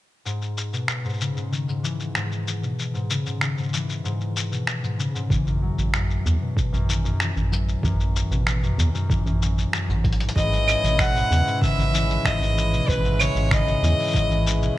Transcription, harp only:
0.25 0.78 G#2 medium
0.73 1.09 B2 medium
1.04 1.25 G#2 medium
1.20 1.41 C#3 medium
1.36 1.66 G#2 medium
1.52 2.67 D#3 medium
1.68 2.14 G#2 medium
1.83 2.67 E3 medium
2.15 2.67 G#2 medium
2.62 2.99 B2 medium
2.94 3.14 G#2 medium
3.10 3.30 C#3 medium
3.26 3.56 G#2 medium
3.41 4.57 D#3 medium
3.57 4.03 G#2 medium
3.73 4.57 E3 medium
4.04 4.57 G#2 medium
4.51 4.88 B2 medium
4.83 5.04 G#2 medium
4.99 5.20 C#3 medium
5.15 5.36 G#2 medium
5.30 6.46 E3 medium
5.46 5.93 F#2 medium
5.62 6.93 F#3 loud
5.94 6.46 F#2 medium
6.41 6.78 B2 medium
6.73 7.03 F#2 medium
6.89 8.36 D#3 medium
7.04 7.35 F#2 medium
7.20 8.36 E3 medium
7.36 7.82 F#2 medium
7.51 8.83 F#3 medium
7.83 8.36 F#2 medium
8.31 8.67 B2 medium
8.62 8.93 F#2 medium
8.78 10.41 D#3 medium
8.94 9.24 F#2 medium
9.10 10.19 E3 medium
9.26 9.72 F#2 medium
9.42 10.41 F#3 medium
9.73 9.93 F#2 medium
9.89 10.35 G#2 medium
10.20 10.41 E3 medium
10.36 10.88 G#2 medium
10.83 11.20 B2 medium
11.15 11.36 G#2 medium
11.31 11.51 C#3 medium
11.46 11.77 G#2 medium
11.62 12.78 D#3 medium
11.78 12.24 G#2 medium
11.93 12.78 E3 loud
12.25 12.78 G#2 medium
12.72 13.09 B2 medium
13.04 13.25 G#2 medium
13.19 13.41 C#3 medium
13.35 13.65 G#2 medium
13.51 14.67 D#3 medium
13.66 14.13 G#2 medium
13.83 14.67 E3 medium
14.14 14.67 G#2 loud
14.61 14.78 B2 medium

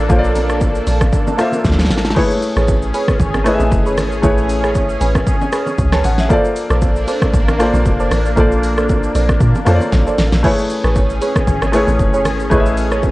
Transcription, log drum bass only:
0.10 0.83 A#1 loud
0.87 1.12 A#1 loud
1.65 1.92 D2 loud
1.91 2.15 A1 medium
2.57 2.92 A1 loud
3.20 3.58 G#1 loud
3.60 3.71 A1 medium
3.72 3.99 F#1 loud
3.98 4.22 G#1 medium
4.24 4.97 A1 loud
5.01 5.26 A1 loud
5.79 6.03 C#2 loud
6.05 6.29 A1 medium
6.71 7.06 A#1 loud
7.34 7.72 A1 loud
7.74 7.85 A#1 loud
7.86 8.10 F1 loud
8.11 8.36 A1 medium
8.37 9.11 A#1 loud
9.15 9.40 A#1 loud
9.40 9.54 A#2 loud
9.67 9.80 F2 loud
9.92 10.06 A#1 loud
10.18 10.32 A1 medium
10.33 10.44 A#1 medium
10.84 11.20 A1 loud
11.47 11.86 G#1 loud
11.88 11.99 A1 medium
11.99 12.27 F#1 loud
12.25 12.50 G#1 medium
12.51 13.11 A1 loud

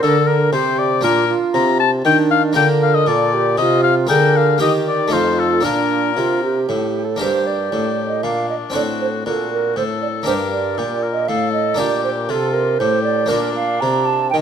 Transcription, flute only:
0.00 0.55 A#4 medium
0.54 1.05 G4 medium
1.04 1.28 F4 medium
1.28 1.77 F4 medium
2.05 2.58 D4 medium
2.56 3.09 A#4 medium
3.08 3.36 A4 medium
3.34 3.59 G4 medium
3.61 4.10 F4 medium
4.11 4.60 A#4 medium
4.60 5.14 G4 medium
5.12 5.66 F4 medium
5.64 6.12 D4 medium
6.17 6.41 F4 medium
6.45 7.06 G4 medium
7.05 7.20 A4 medium
7.21 7.48 C5 medium
7.47 8.06 D5 medium
8.07 8.25 D#5 medium
8.24 8.49 F5 medium
8.49 8.55 D#5 medium
8.76 8.82 D5 medium
9.02 9.08 C5 medium
9.27 9.51 A4 medium
9.52 9.76 A#4 medium
9.77 9.83 C5 medium
10.02 10.08 D5 medium
10.27 10.33 C5 medium
10.52 11.10 D5 medium
11.12 11.30 D#5 medium
11.28 11.52 F5 medium
11.53 11.79 D#5 medium
11.77 12.03 D5 medium
12.04 12.10 C5 medium
12.28 12.55 A4 medium
12.53 12.81 A#4 medium
12.79 13.03 C5 medium
13.03 13.30 D5 medium
13.28 13.54 A#4 medium
13.55 13.82 F5 medium
13.81 14.07 A#5 medium
14.05 14.30 A5 medium
14.30 14.36 G5 medium

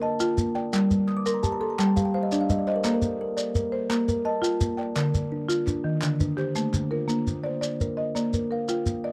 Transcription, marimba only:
0.02 0.55 D#5 medium
0.20 0.55 F4 medium
0.55 0.90 G5 medium
0.73 1.08 G3 medium
1.26 1.61 A#4 medium
1.61 2.14 A4 medium
1.79 2.14 G3 medium
2.15 2.67 C5 medium
2.32 2.67 D4 medium
2.68 3.02 D#5 medium
2.84 3.20 A#3 medium
3.37 3.72 D5 medium
3.72 4.25 C5 medium
3.90 4.25 A#3 medium
4.25 4.78 D#5 medium
4.42 4.78 F4 medium
4.77 5.13 G5 medium
4.96 5.31 D3 medium
5.49 5.84 F4 medium
5.84 6.37 D#3 medium
6.02 6.38 D3 medium
6.37 6.90 G4 medium
6.55 6.91 A3 medium
6.91 7.26 A#4 medium
7.08 7.44 A#3 medium
7.44 7.60 D5 medium
7.61 7.97 D5 medium
7.97 8.51 D#5 medium
8.15 8.51 A#3 medium
8.15 8.68 D5 medium
8.51 9.04 A#4 soft
8.69 9.04 F4 medium
9.04 9.12 D5 medium

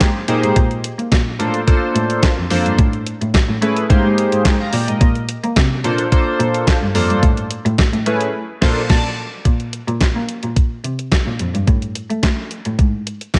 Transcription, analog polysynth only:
0.28 0.56 A#3 loud
0.28 0.56 D#4 loud
0.28 0.56 G4 medium
0.28 0.56 G#4 medium
0.28 0.56 C5 loud
1.39 1.61 A#3 medium
1.39 1.61 D4 medium
1.39 1.61 F4 medium
1.39 1.61 A4 medium
1.39 1.61 C5 loud
1.67 2.31 A#3 medium
1.67 2.31 D4 medium
1.67 2.31 F4 medium
1.67 2.32 A4 medium
1.67 2.32 C5 loud
2.50 2.78 A#3 loud
2.50 2.78 D4 loud
2.50 2.78 F4 medium
2.50 2.78 A4 medium
2.50 2.78 C5 loud
3.61 3.83 A3 medium
3.61 3.83 C#4 medium
3.61 3.83 E4 medium
3.61 3.83 G#4 medium
3.61 3.84 B4 loud
3.89 4.54 A#3 loud
3.89 4.54 D#4 medium
3.89 4.54 G4 medium
3.89 4.54 G#4 medium
3.89 4.45 C5 loud
4.60 4.72 F5 medium
4.60 4.72 A#5 medium
4.73 4.87 D5 medium
4.73 4.87 G5 medium
4.88 5.14 A#4 medium
4.88 5.14 D#5 medium
5.84 6.06 A#3 medium
5.84 6.06 D4 medium
5.84 6.06 F4 medium
5.84 6.06 A4 medium
5.84 6.06 C5 loud
6.11 6.76 A#3 loud
6.11 6.76 D4 medium
6.11 6.76 F4 medium
6.11 6.76 A4 medium
6.11 6.76 C5 loud
6.94 7.23 A#3 loud
6.94 7.23 D4 medium
6.94 7.23 F4 loud
6.94 7.23 A4 medium
6.94 7.23 C5 loud
8.06 8.28 A3 medium
8.06 8.28 C#4 medium
8.06 8.28 E4 medium
8.06 8.28 G#4 medium
8.06 8.28 B4 loud
8.61 8.81 A#3 loud
8.61 8.81 D4 loud
8.61 8.81 F4 loud
8.61 8.81 A4 loud
8.61 8.81 C5 loud
8.90 9.09 D5 loud
8.90 9.09 A5 loud

